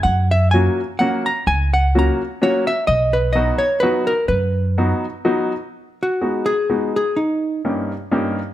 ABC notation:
X:1
M:3/4
L:1/8
Q:"Swing" 1/4=126
K:B
V:1 name="Hollow-body jazz guitar"
f e g z f a | g f a z c e | d B d c B A | B4- B z |
[K:G#m] z F2 G2 G | D2 z4 |]
V:2 name="Upright piano"
z2 [F,A,CF] z [F,A,CF] z | z2 [F,A,CF] z [F,A,CF] z | z2 [F,B,DF] z [F,B,DF] z | z2 [F,B,DF] z [F,B,DF] z |
[K:G#m] z2 [G,B,DF] z [G,B,DF] z | z2 [=G,,A,CD=G] z [G,,A,CDG] z |]
V:3 name="Upright bass" clef=bass
F,,4 z2 | C,,4 z2 | B,,,4 z2 | F,,4 z2 |
[K:G#m] z6 | z6 |]